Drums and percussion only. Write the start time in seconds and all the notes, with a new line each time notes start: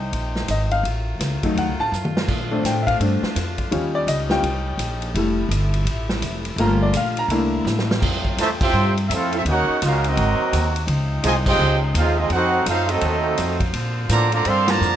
0.13 ride
0.36 snare
0.48 hi-hat pedal, ride
0.71 ride
0.85 ride
1.20 snare, hi-hat pedal, ride
1.43 kick, ride
1.57 ride
1.93 hi-hat pedal
2.05 mid tom
2.17 snare
2.28 kick, crash
2.65 snare, hi-hat pedal, ride
2.87 kick, ride
3.01 ride
3.23 snare
3.36 snare, hi-hat pedal, ride
3.58 kick, ride
3.72 ride
4.08 hi-hat pedal, ride
4.29 snare
4.43 ride
4.79 hi-hat pedal, ride
5.02 ride
5.15 ride
5.51 hi-hat pedal, ride
5.74 ride
5.87 ride
6.09 snare
6.22 hi-hat pedal, ride
6.45 ride
6.58 ride
6.93 hi-hat pedal, ride
7.17 ride
7.30 ride
7.66 snare, hi-hat pedal
7.79 snare
7.91 snare
8.02 kick, crash
8.25 kick
8.38 snare, hi-hat pedal, ride
8.61 kick, crash
8.97 ride
9.11 hi-hat pedal, ride
9.32 ride
9.46 ride
9.82 hi-hat pedal, ride
10.04 ride
10.17 ride
10.53 hi-hat pedal, ride
10.76 ride
10.88 ride
11.24 hi-hat pedal, ride
11.46 kick, crash
11.95 hi-hat pedal, ride
12.30 ride
12.66 hi-hat pedal, ride
12.89 ride
13.01 ride
13.37 hi-hat pedal, ride
13.60 kick, ride
13.74 ride
14.09 hi-hat pedal, ride
14.32 ride
14.45 ride
14.68 snare, ride
14.82 hi-hat pedal